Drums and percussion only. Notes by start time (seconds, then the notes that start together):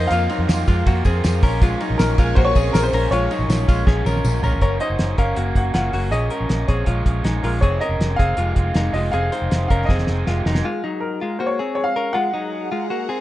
0.10 hi-hat pedal, ride, tambourine
0.29 ride, tambourine
0.49 snare, ride, tambourine
0.67 kick, ride, tambourine
0.86 kick, ride, tambourine
1.05 kick, ride, tambourine
1.24 snare, ride, tambourine
1.43 kick, open hi-hat, ride, tambourine
1.61 kick, hi-hat pedal, ride, tambourine
1.80 ride, tambourine
1.99 snare, ride, tambourine
2.17 kick, snare, ride, tambourine
2.36 kick, ride
2.55 kick, ride, tambourine
2.74 snare, ride, tambourine
2.93 open hi-hat, ride, tambourine
3.12 hi-hat pedal, ride, tambourine
3.31 ride, tambourine
3.50 snare, ride, tambourine
3.68 kick, snare, ride, tambourine
3.87 kick, snare
4.06 high tom, tambourine
4.16 high tom
4.24 mid tom, tambourine
4.44 floor tom, tambourine
4.52 floor tom
4.61 kick, closed hi-hat
4.80 closed hi-hat
4.99 snare, closed hi-hat
5.18 kick, closed hi-hat
5.36 closed hi-hat
5.55 kick, closed hi-hat
5.74 snare, closed hi-hat
5.93 open hi-hat
6.12 closed hi-hat
6.30 closed hi-hat
6.49 snare, closed hi-hat
6.68 kick, snare, closed hi-hat
6.86 kick, closed hi-hat
7.06 kick, closed hi-hat
7.24 snare, closed hi-hat
7.44 open hi-hat
7.62 kick, closed hi-hat
7.81 closed hi-hat
8.01 snare, closed hi-hat
8.19 kick, snare, closed hi-hat
8.37 closed hi-hat
8.56 kick, closed hi-hat
8.75 snare, closed hi-hat
8.94 open hi-hat
9.13 closed hi-hat
9.32 closed hi-hat
9.51 snare, closed hi-hat
9.70 kick, closed hi-hat
9.89 kick, snare
9.98 snare
10.07 snare
10.27 snare
10.46 snare
10.55 snare